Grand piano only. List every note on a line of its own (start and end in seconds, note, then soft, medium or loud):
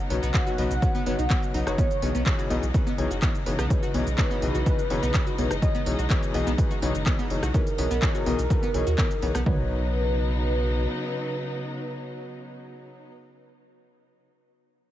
0.10 0.18 B2 medium
0.10 0.18 F#3 medium
0.10 0.18 D#4 medium
0.10 0.18 B4 medium
0.10 0.18 C#5 medium
0.34 0.56 B2 loud
0.34 0.56 F#3 medium
0.34 0.56 D#4 medium
0.34 0.56 B4 medium
0.34 0.55 C#5 loud
0.58 0.70 B2 loud
0.58 0.70 F#3 medium
0.58 0.70 D#4 medium
0.58 0.70 B4 medium
0.58 0.70 D#5 loud
0.82 0.94 B2 medium
0.82 0.94 F#3 medium
0.82 0.94 D#4 medium
0.82 0.94 B4 medium
0.82 0.94 C#5 loud
1.06 1.14 B2 medium
1.06 1.14 F#3 medium
1.06 1.14 D#4 medium
1.06 1.14 B4 medium
1.06 1.14 C#5 medium
1.30 1.52 B2 medium
1.30 1.52 F#3 medium
1.30 1.52 D#4 medium
1.30 1.52 B4 medium
1.30 1.52 C#5 medium
1.54 1.64 F#3 medium
1.54 1.64 D#4 medium
1.54 1.64 B4 medium
1.54 1.64 D#5 medium
1.67 1.76 F#3 medium
1.67 1.76 D#4 medium
1.67 1.76 B4 medium
1.67 1.76 C#5 loud
1.78 1.86 B2 medium
2.02 2.10 B2 medium
2.02 2.10 E3 medium
2.02 2.10 D#4 medium
2.02 2.10 G#4 medium
2.02 2.10 C#5 medium
2.26 2.48 B2 loud
2.26 2.48 E3 medium
2.26 2.48 D#4 medium
2.26 2.48 G#4 medium
2.26 2.48 C#5 loud
2.50 2.62 B2 loud
2.50 2.62 E3 medium
2.50 2.62 D#4 medium
2.50 2.62 G#4 medium
2.50 2.62 D#5 loud
2.74 2.86 B2 medium
2.74 2.86 E3 medium
2.74 2.86 D#4 medium
2.74 2.86 G#4 medium
2.74 2.86 B4 loud
2.98 3.06 B2 medium
2.98 3.06 E3 medium
2.98 3.06 D#4 medium
2.98 3.06 G#4 medium
2.98 3.06 C#5 loud
3.22 3.30 B2 medium
3.22 3.30 E3 medium
3.22 3.30 D#4 medium
3.22 3.30 G#4 medium
3.22 3.30 C#5 medium
3.46 3.54 B2 medium
3.46 3.54 E3 medium
3.46 3.54 D#4 medium
3.46 3.54 G#4 medium
3.46 3.54 C#5 medium
3.70 3.78 B2 medium
3.70 3.78 E3 medium
3.70 3.78 D#4 medium
3.70 3.78 G#4 medium
3.70 3.78 C#5 loud
3.94 4.02 B2 medium
3.94 4.02 E3 medium
3.94 4.02 D#4 medium
3.94 4.02 G#4 medium
3.94 4.02 C#5 medium
4.18 4.40 B2 loud
4.18 4.40 E3 medium
4.18 4.40 D#4 medium
4.18 4.40 G#4 medium
4.18 4.40 C#5 loud
4.42 4.54 B2 loud
4.42 4.54 E3 medium
4.42 4.54 D#4 medium
4.42 4.54 G#4 medium
4.42 4.54 D#5 loud
4.66 4.78 B2 medium
4.66 4.78 E3 medium
4.66 4.78 D#4 medium
4.66 4.78 G#4 medium
4.66 4.78 B4 loud
4.90 4.98 B2 medium
4.90 4.98 E3 medium
4.90 4.98 D#4 medium
4.90 4.98 G#4 medium
4.90 4.98 C#5 loud
5.14 5.22 B2 medium
5.14 5.22 E3 medium
5.14 5.22 D#4 medium
5.14 5.22 G#4 medium
5.14 5.22 C#5 medium
5.38 5.46 B2 medium
5.38 5.46 E3 medium
5.38 5.46 D#4 medium
5.38 5.46 G#4 medium
5.38 5.46 C#5 medium
5.62 5.70 B2 medium
5.62 5.70 E3 medium
5.62 5.70 D#4 medium
5.62 5.70 G#4 medium
5.62 5.70 C#5 loud
5.86 5.94 B2 medium
5.86 5.94 E3 medium
5.86 5.94 D#4 medium
5.86 5.94 G#4 medium
5.86 5.94 C#5 medium
6.10 6.32 B2 loud
6.10 6.32 E3 medium
6.10 6.32 D#4 medium
6.10 6.32 G#4 medium
6.10 6.32 C#5 loud
6.34 6.46 B2 loud
6.34 6.46 E3 medium
6.34 6.46 D#4 medium
6.34 6.46 G#4 medium
6.34 6.46 D#5 loud
6.58 6.70 B2 medium
6.58 6.70 E3 medium
6.58 6.70 D#4 medium
6.58 6.70 G#4 medium
6.58 6.70 B4 loud
6.82 6.90 B2 medium
6.82 6.90 E3 medium
6.82 6.90 D#4 medium
6.82 6.90 G#4 medium
6.82 6.90 C#5 loud
7.06 7.14 B2 medium
7.06 7.14 E3 medium
7.06 7.14 D#4 medium
7.06 7.14 G#4 medium
7.06 7.14 C#5 medium
7.30 7.38 B2 medium
7.30 7.38 E3 medium
7.30 7.38 D#4 medium
7.30 7.38 G#4 medium
7.30 7.38 C#5 medium
7.54 7.62 B2 medium
7.54 7.62 E3 medium
7.54 7.62 D#4 medium
7.54 7.62 G#4 medium
7.54 7.62 C#5 loud
7.78 7.86 B2 medium
7.78 7.86 E3 medium
7.78 7.86 D#4 medium
7.78 7.86 G#4 medium
7.78 7.86 C#5 medium
8.02 8.24 B2 loud
8.02 8.24 E3 medium
8.02 8.24 D#4 medium
8.02 8.24 G#4 medium
8.02 8.24 C#5 loud
8.26 8.38 B2 loud
8.26 8.38 E3 medium
8.26 8.38 D#4 medium
8.26 8.38 G#4 medium
8.26 8.38 D#5 loud
8.50 8.62 B2 medium
8.50 8.62 E3 medium
8.50 8.62 D#4 medium
8.50 8.62 G#4 medium
8.50 8.62 B4 loud
8.74 8.82 B2 medium
8.74 8.82 E3 medium
8.74 8.82 D#4 medium
8.74 8.82 G#4 medium
8.74 8.82 C#5 loud
8.98 9.06 B2 medium
8.98 9.06 E3 medium
8.98 9.06 D#4 medium
8.98 9.06 G#4 medium
8.98 9.06 C#5 medium
9.22 9.30 E3 medium
9.22 9.30 D#4 medium
9.22 9.30 G#4 medium
9.22 9.30 C#5 medium
9.46 13.08 F#3 medium
9.46 13.08 D#4 medium
9.46 13.08 B4 medium
9.46 13.08 C#5 loud